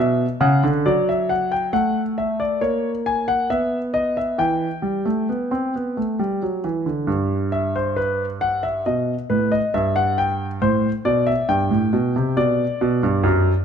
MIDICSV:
0, 0, Header, 1, 2, 480
1, 0, Start_track
1, 0, Key_signature, 1, "minor"
1, 0, Tempo, 882353
1, 942, Time_signature, 3, 2, 24, 8
1, 1905, Tempo, 894188
1, 4305, Tempo, 874636
1, 7420, End_track
2, 0, Start_track
2, 0, Title_t, "Grand piano"
2, 0, Program_c, 0, 0
2, 0, Note_on_c, 0, 47, 68
2, 0, Note_on_c, 0, 76, 66
2, 134, Note_off_c, 0, 47, 0
2, 137, Note_off_c, 0, 76, 0
2, 220, Note_on_c, 0, 49, 77
2, 222, Note_on_c, 0, 78, 63
2, 338, Note_off_c, 0, 49, 0
2, 345, Note_on_c, 0, 50, 68
2, 370, Note_off_c, 0, 78, 0
2, 460, Note_off_c, 0, 50, 0
2, 466, Note_on_c, 0, 54, 66
2, 466, Note_on_c, 0, 74, 61
2, 580, Note_off_c, 0, 74, 0
2, 592, Note_on_c, 0, 76, 60
2, 703, Note_off_c, 0, 76, 0
2, 704, Note_on_c, 0, 78, 60
2, 819, Note_off_c, 0, 78, 0
2, 824, Note_on_c, 0, 79, 56
2, 929, Note_off_c, 0, 54, 0
2, 940, Note_off_c, 0, 79, 0
2, 940, Note_on_c, 0, 57, 54
2, 941, Note_on_c, 0, 78, 65
2, 1091, Note_off_c, 0, 78, 0
2, 1185, Note_on_c, 0, 76, 56
2, 1301, Note_off_c, 0, 76, 0
2, 1304, Note_on_c, 0, 74, 56
2, 1408, Note_off_c, 0, 57, 0
2, 1420, Note_off_c, 0, 74, 0
2, 1421, Note_on_c, 0, 58, 51
2, 1422, Note_on_c, 0, 73, 57
2, 1571, Note_off_c, 0, 73, 0
2, 1666, Note_on_c, 0, 80, 62
2, 1781, Note_off_c, 0, 80, 0
2, 1784, Note_on_c, 0, 78, 65
2, 1888, Note_off_c, 0, 58, 0
2, 1900, Note_off_c, 0, 78, 0
2, 1904, Note_on_c, 0, 59, 55
2, 1905, Note_on_c, 0, 76, 65
2, 2053, Note_off_c, 0, 76, 0
2, 2139, Note_on_c, 0, 75, 70
2, 2257, Note_off_c, 0, 75, 0
2, 2263, Note_on_c, 0, 76, 59
2, 2369, Note_off_c, 0, 59, 0
2, 2378, Note_on_c, 0, 52, 57
2, 2380, Note_off_c, 0, 76, 0
2, 2381, Note_on_c, 0, 79, 65
2, 2528, Note_off_c, 0, 52, 0
2, 2614, Note_on_c, 0, 55, 51
2, 2735, Note_off_c, 0, 55, 0
2, 2739, Note_on_c, 0, 57, 50
2, 2858, Note_off_c, 0, 57, 0
2, 2866, Note_on_c, 0, 59, 46
2, 2982, Note_off_c, 0, 59, 0
2, 2984, Note_on_c, 0, 60, 49
2, 3101, Note_off_c, 0, 60, 0
2, 3114, Note_on_c, 0, 59, 43
2, 3227, Note_off_c, 0, 59, 0
2, 3230, Note_on_c, 0, 57, 45
2, 3345, Note_off_c, 0, 57, 0
2, 3350, Note_on_c, 0, 55, 47
2, 3465, Note_off_c, 0, 55, 0
2, 3474, Note_on_c, 0, 54, 45
2, 3565, Note_off_c, 0, 79, 0
2, 3588, Note_off_c, 0, 54, 0
2, 3590, Note_on_c, 0, 52, 48
2, 3706, Note_off_c, 0, 52, 0
2, 3707, Note_on_c, 0, 50, 44
2, 3821, Note_on_c, 0, 43, 55
2, 3824, Note_off_c, 0, 50, 0
2, 4063, Note_on_c, 0, 76, 62
2, 4180, Note_off_c, 0, 76, 0
2, 4188, Note_on_c, 0, 72, 57
2, 4300, Note_on_c, 0, 71, 62
2, 4302, Note_off_c, 0, 72, 0
2, 4452, Note_off_c, 0, 71, 0
2, 4545, Note_on_c, 0, 78, 66
2, 4663, Note_off_c, 0, 78, 0
2, 4666, Note_on_c, 0, 76, 55
2, 4763, Note_off_c, 0, 43, 0
2, 4784, Note_off_c, 0, 76, 0
2, 4792, Note_on_c, 0, 47, 43
2, 4793, Note_on_c, 0, 75, 57
2, 4941, Note_off_c, 0, 47, 0
2, 4942, Note_off_c, 0, 75, 0
2, 5031, Note_on_c, 0, 71, 62
2, 5033, Note_on_c, 0, 45, 51
2, 5148, Note_off_c, 0, 71, 0
2, 5152, Note_on_c, 0, 75, 62
2, 5182, Note_off_c, 0, 45, 0
2, 5268, Note_off_c, 0, 75, 0
2, 5276, Note_on_c, 0, 43, 58
2, 5276, Note_on_c, 0, 76, 65
2, 5390, Note_off_c, 0, 76, 0
2, 5394, Note_on_c, 0, 78, 67
2, 5510, Note_off_c, 0, 78, 0
2, 5516, Note_on_c, 0, 79, 64
2, 5663, Note_off_c, 0, 79, 0
2, 5739, Note_off_c, 0, 43, 0
2, 5756, Note_on_c, 0, 45, 54
2, 5756, Note_on_c, 0, 72, 65
2, 5902, Note_off_c, 0, 45, 0
2, 5903, Note_off_c, 0, 72, 0
2, 5994, Note_on_c, 0, 47, 55
2, 5994, Note_on_c, 0, 74, 68
2, 6108, Note_off_c, 0, 74, 0
2, 6112, Note_on_c, 0, 76, 64
2, 6140, Note_off_c, 0, 47, 0
2, 6226, Note_off_c, 0, 76, 0
2, 6233, Note_on_c, 0, 43, 52
2, 6234, Note_on_c, 0, 79, 66
2, 6347, Note_off_c, 0, 43, 0
2, 6354, Note_on_c, 0, 45, 54
2, 6468, Note_off_c, 0, 45, 0
2, 6476, Note_on_c, 0, 47, 60
2, 6589, Note_off_c, 0, 47, 0
2, 6602, Note_on_c, 0, 48, 55
2, 6698, Note_off_c, 0, 79, 0
2, 6712, Note_off_c, 0, 48, 0
2, 6716, Note_on_c, 0, 47, 57
2, 6718, Note_on_c, 0, 74, 65
2, 6863, Note_off_c, 0, 47, 0
2, 6960, Note_on_c, 0, 47, 71
2, 7071, Note_off_c, 0, 47, 0
2, 7080, Note_on_c, 0, 43, 68
2, 7190, Note_off_c, 0, 43, 0
2, 7192, Note_on_c, 0, 42, 71
2, 7338, Note_off_c, 0, 42, 0
2, 7420, Note_off_c, 0, 74, 0
2, 7420, End_track
0, 0, End_of_file